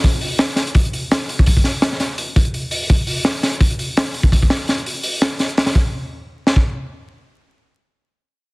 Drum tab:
HH |o-o-o-oxoxo-o-o-|o-o-o-o-o-oxo-o-|o-o-o-oxoxo-o-o-|o-o-oxo-o-o-oxoo|
SD |----o-o-----o---|--o-ooo---------|----o-o-----o---|--o-o-----o-o-oo|
BD |o-------o------o|oo--------o-----|o-------o------o|oo--------------|

HH |----------------|----------------|
SD |--------o-------|----------------|
BD |o--------o------|----------------|